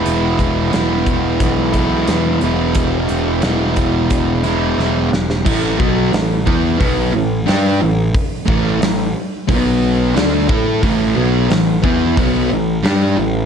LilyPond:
<<
  \new Staff \with { instrumentName = "Distorted electric guitar" } { \clef bass \time 4/4 \key e \mixolydian \tempo 4 = 89 <e, b, e gis b e'>4 <e, b, e gis b e'>4. <e, b, e gis b e'>4 <e, b, e gis b e'>8~ | <e, b, e gis b e'>4 <e, b, e gis b e'>4. <e, b, e gis b e'>4 r8 | \key b \minor <a, e a>8 <b, fis b>8 <a, e>8 <e b e'>8 <b, fis b>8 <a, e>8 <g d' g'>8 <a, e>8 | r8 <a, e a>8 <a, e>8 r8 <b, fis b>4 <d a d'>8 <a e' a'>8 |
<a, e a>8 <b, fis b>8 <a, e>8 <e b e'>8 <b, fis b>8 <a, e>8 <g d' g'>8 <a, e>8 | }
  \new Staff \with { instrumentName = "Picked electric bass" } { \clef bass \time 4/4 \key e \mixolydian e,,8 e,,8 e,,8 e,,8 b,,4 e,8 e,,8 | e,,8 e,,8 e,,8 e,,8 e,,4 e,,8 e,,8 | \key b \minor a,,8 b,,8 a,,8 e,8 b,,8 a,,8 g,8 a,,8 | r8 a,,8 a,,8 r8 b,,4 d,8 a,8 |
a,,8 b,,8 a,,8 e,8 b,,8 a,,8 g,8 a,,8 | }
  \new DrumStaff \with { instrumentName = "Drums" } \drummode { \time 4/4 hh8 <hh bd>8 <hh sn>8 <hh bd>8 <hh bd>8 <hh bd>8 <hh sn>8 hh8 | <hh bd>8 hh8 <hh sn>8 <hh bd>8 <hh bd>8 <hh sn>8 sn8 sn16 sn16 | <cymc bd>8 bd8 <hho sn>8 bd8 <hho bd>4 <hho sn>4 | <hho bd>8 bd8 <hho sn>4 <hho bd>4 <hho sn>8 bd8 |
<hho bd>4 <hho sn>8 bd8 <hho bd>4 <hho sn>4 | }
>>